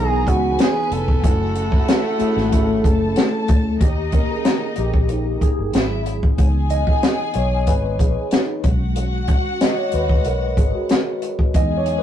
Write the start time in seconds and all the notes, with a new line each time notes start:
Already playing: B1 D#3 E3 B3 D#4 E4 F#4 G#4 A#4 A#5
0.27 C#2 F#4 B4 G#5, kick, closed hi-hat
0.59 G#4, snare, closed hi-hat
0.91 F1 A4, closed hi-hat
1.08 kick
1.22 F#1 C#3 A3 C#4 E4 F#4 F#5 G#5, kick, closed hi-hat
1.55 closed hi-hat
1.72 kick
1.88 snare, closed hi-hat
2.19 A3 C#4 E4 G#4, muted fingered electric bass stroke, closed hi-hat
2.36 G#1, snare
2.51 A3 C#4 E4 A4, kick, closed hi-hat
2.84 F#1 A4 A5, kick, closed hi-hat
3.16 snare, closed hi-hat
3.48 D2, kick, closed hi-hat
3.79 D#2 D#4 G4 D#5, kick, closed hi-hat
4.12 D#3 A#3 C#4 A#4, kick, closed hi-hat
4.30 G#4
4.45 snare, closed hi-hat
4.76 A#1 G4, closed hi-hat
4.94 kick
5.09 D#4, closed hi-hat
5.41 G#4, muted fingered electric bass stroke, kick, closed hi-hat
5.59 G1
5.73 G#1 F#3 C4 E4 E5, snare, closed hi-hat
6.06 closed hi-hat
6.23 kick
6.37 C#2 E3 B3 D#4 G#4 G#5, kick, closed hi-hat
6.70 D#5, closed hi-hat
6.87 kick
7.03 snare, closed hi-hat
7.34 B1 C#5, closed hi-hat
7.67 G#1 B4, kick, closed hi-hat
7.99 A#1 G#4, kick, closed hi-hat
8.31 D#4, snare, closed hi-hat
8.64 B1 D#3 G#3 C#4 F#4 F#5, kick, closed hi-hat
8.96 closed hi-hat
9.28 kick, closed hi-hat
9.61 D#5, snare, closed hi-hat
9.78 C#5
9.92 D#2 B4, closed hi-hat
10.09 kick
10.24 B1 A#4, closed hi-hat
10.57 G#1 G#4, kick, closed hi-hat
10.75 F#4
10.89 snare, closed hi-hat
11.22 closed hi-hat
11.39 kick
11.54 E2 F#3 G#3 D#4 G#4 D#5 G#5, kick, closed hi-hat
11.77 C#5
11.86 closed hi-hat
11.99 B4